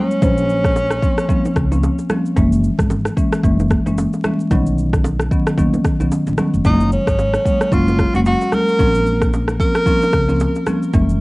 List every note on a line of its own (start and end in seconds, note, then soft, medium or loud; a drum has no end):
0.00 0.20 F#3 medium
0.00 0.20 G#3 medium
0.00 0.20 A#3 medium
0.00 0.20 C#4 medium
0.00 2.06 C#4 loud
0.11 shaker soft
0.22 0.98 A#1 loud
0.22 0.72 F3 medium
0.22 0.72 A#3 medium
0.22 0.72 C#4 loud
0.22 0.72 C5 medium
0.22 kick loud
0.22 low conga medium
0.22 shaker medium
0.38 shaker medium
0.49 shaker medium
0.64 kick medium
0.64 cross-stick medium
0.64 shaker medium
0.76 high bongo medium
0.76 shaker medium
0.91 cross-stick medium
0.91 low bongo medium
0.91 shaker medium
1.02 1.23 F3 medium
1.02 1.24 A#3 medium
1.02 1.24 C4 medium
1.02 1.24 C#4 medium
1.02 kick medium
1.02 shaker medium
1.18 cross-stick medium
1.18 shaker medium
1.29 1.50 F3 medium
1.29 1.50 A#3 medium
1.29 1.50 C4 medium
1.29 1.51 C#4 loud
1.29 kick medium
1.29 low conga medium
1.29 shaker medium
1.45 low bongo medium
1.45 shaker medium
1.56 1.86 C#2 medium
1.56 kick medium
1.56 cross-stick medium
1.56 shaker medium
1.71 1.90 F3 medium
1.71 1.91 A#3 medium
1.71 1.91 C4 medium
1.71 1.91 C#4 medium
1.71 low bongo medium
1.71 shaker medium
1.83 high bongo medium
1.83 shaker medium
1.99 high bongo soft
1.99 shaker medium
2.10 2.31 F3 medium
2.10 2.31 A#3 medium
2.10 2.31 C4 medium
2.10 2.31 C#4 medium
2.10 cross-stick medium
2.10 low conga medium
2.10 shaker medium
2.26 shaker soft
2.36 2.67 F#1 loud
2.36 2.86 E3 medium
2.36 2.86 G#3 medium
2.36 2.86 A#3 medium
2.36 2.87 C#4 loud
2.36 kick loud
2.36 low conga medium
2.36 shaker medium
2.52 shaker medium
2.64 shaker medium
2.79 3.06 G#1 medium
2.79 kick loud
2.79 cross-stick medium
2.79 shaker medium
2.90 high bongo medium
2.90 shaker medium
3.05 cross-stick medium
3.05 low bongo medium
3.05 shaker medium
3.17 3.38 E3 medium
3.17 3.38 G#3 medium
3.17 3.38 A#3 medium
3.17 3.38 C#4 medium
3.17 kick medium
3.17 shaker medium
3.33 cross-stick loud
3.33 shaker medium
3.43 3.74 F#1 loud
3.43 3.82 E3 medium
3.43 3.82 G#3 medium
3.43 3.82 A#3 medium
3.43 3.82 C#4 loud
3.43 kick medium
3.43 low conga medium
3.43 shaker medium
3.59 low bongo medium
3.59 shaker medium
3.70 kick medium
3.70 cross-stick medium
3.70 shaker medium
3.86 4.05 F#1 medium
3.86 4.21 E3 medium
3.86 4.21 G#3 medium
3.86 4.21 A#3 medium
3.86 4.22 C#4 medium
3.86 low bongo medium
3.86 shaker medium
3.98 high bongo medium
3.98 shaker medium
4.13 high bongo soft
4.13 shaker soft
4.24 4.49 E3 medium
4.24 4.49 G#3 medium
4.24 4.49 A#3 medium
4.24 4.49 C#4 medium
4.24 cross-stick loud
4.24 low conga medium
4.24 shaker medium
4.40 shaker soft
4.51 5.27 B1 loud
4.51 5.01 D#3 medium
4.51 5.01 F#3 medium
4.51 5.01 B3 medium
4.51 5.01 C#4 loud
4.51 kick loud
4.51 low conga medium
4.51 shaker medium
4.66 shaker medium
4.78 shaker medium
4.93 kick loud
4.93 cross-stick medium
4.93 shaker medium
5.04 high bongo medium
5.04 shaker medium
5.19 cross-stick medium
5.19 low bongo medium
5.19 shaker medium
5.31 5.52 D#3 medium
5.31 5.52 F#3 medium
5.31 5.52 B3 medium
5.31 5.52 C#4 medium
5.31 kick medium
5.31 shaker medium
5.47 cross-stick loud
5.47 shaker medium
5.58 5.77 D#2 loud
5.58 5.79 D#3 medium
5.58 5.79 F#3 medium
5.58 5.79 B3 medium
5.58 5.79 C#4 loud
5.58 kick medium
5.58 low conga medium
5.58 shaker medium
5.74 low bongo medium
5.74 shaker medium
5.84 kick medium
5.84 cross-stick medium
5.84 shaker medium
6.00 6.08 B1 medium
6.00 6.19 D#3 medium
6.00 6.19 F#3 medium
6.00 6.19 B3 medium
6.00 6.20 C#4 medium
6.00 low bongo medium
6.00 shaker medium
6.12 high bongo medium
6.12 shaker medium
6.27 6.35 A#1 medium
6.27 high bongo soft
6.27 shaker soft
6.38 6.59 D#3 medium
6.38 6.59 F#3 medium
6.38 6.60 B3 medium
6.38 6.60 C#4 medium
6.38 cross-stick medium
6.38 low conga medium
6.38 shaker medium
6.54 6.62 F1 medium
6.54 shaker medium
6.65 6.95 F#1 loud
6.65 7.15 F#3 medium
6.65 7.15 G#3 medium
6.65 7.15 A#3 medium
6.65 7.15 C#4 loud
6.65 6.90 D#4 medium
6.65 kick loud
6.65 low conga medium
6.65 shaker medium
6.80 shaker medium
6.92 7.75 C#4 medium
6.92 shaker medium
7.07 7.34 G#1 medium
7.07 kick loud
7.07 cross-stick medium
7.07 shaker medium
7.19 high bongo medium
7.19 shaker medium
7.34 cross-stick medium
7.34 low bongo medium
7.34 shaker medium
7.45 7.66 F#3 medium
7.45 7.67 G#3 medium
7.45 7.67 A#3 medium
7.45 7.67 C#4 medium
7.45 kick medium
7.45 shaker medium
7.61 cross-stick medium
7.61 shaker medium
7.72 8.02 F#1 loud
7.72 8.11 F#3 medium
7.72 8.11 G#3 medium
7.72 8.11 A#3 medium
7.72 8.11 C#4 loud
7.72 8.15 F4 loud
7.72 kick medium
7.72 low conga medium
7.72 shaker medium
7.88 low bongo medium
7.88 shaker medium
7.99 kick medium
7.99 cross-stick medium
7.99 shaker medium
8.14 8.33 F#1 medium
8.14 8.50 F#3 medium
8.14 8.50 G#3 medium
8.14 8.50 A#3 medium
8.14 8.50 C#4 medium
8.14 8.21 F#4 medium
8.14 low bongo medium
8.14 shaker medium
8.26 8.56 F#4 loud
8.26 high bongo medium
8.26 shaker medium
8.41 high bongo soft
8.41 shaker medium
8.52 8.77 F#3 medium
8.52 8.77 G#3 medium
8.52 8.78 A#3 medium
8.52 8.78 C#4 medium
8.52 9.34 A#4 loud
8.52 cross-stick medium
8.52 low conga medium
8.52 shaker medium
8.68 shaker soft
8.79 9.56 A#1 loud
8.79 9.29 F3 medium
8.79 9.29 A#3 medium
8.79 9.29 C4 medium
8.79 9.29 C#4 loud
8.79 kick loud
8.79 low conga medium
8.79 shaker medium
8.95 shaker medium
9.06 shaker medium
9.21 kick loud
9.21 cross-stick medium
9.21 shaker medium
9.33 high bongo medium
9.33 shaker medium
9.48 cross-stick medium
9.48 low bongo medium
9.48 shaker medium
9.59 9.81 F3 medium
9.59 9.81 A#3 medium
9.59 9.81 C4 medium
9.59 9.81 C#4 medium
9.59 10.63 A#4 loud
9.59 kick medium
9.59 shaker medium
9.75 cross-stick loud
9.75 shaker medium
9.86 10.07 F3 medium
9.86 10.07 A#3 medium
9.86 10.08 C4 medium
9.86 10.08 C#4 loud
9.86 kick medium
9.86 low conga medium
9.86 shaker medium
10.02 low bongo medium
10.02 shaker medium
10.13 10.43 C#2 medium
10.13 kick medium
10.13 cross-stick medium
10.13 shaker medium
10.29 10.48 F3 medium
10.29 10.48 A#3 medium
10.29 10.48 C4 medium
10.29 10.48 C#4 medium
10.29 low bongo medium
10.29 shaker medium
10.40 high bongo medium
10.40 shaker medium
10.55 high bongo soft
10.55 shaker soft
10.66 10.88 F3 medium
10.66 10.88 A#3 medium
10.66 10.88 C4 medium
10.66 10.88 C#4 medium
10.66 cross-stick medium
10.66 low conga medium
10.66 shaker medium
10.82 shaker soft
10.93 11.21 F#1 loud
10.93 11.21 E3 medium
10.93 11.21 G#3 medium
10.93 11.21 A#3 medium
10.93 11.21 C#4 loud
10.93 kick loud
10.93 low conga medium
10.93 shaker medium
11.09 shaker medium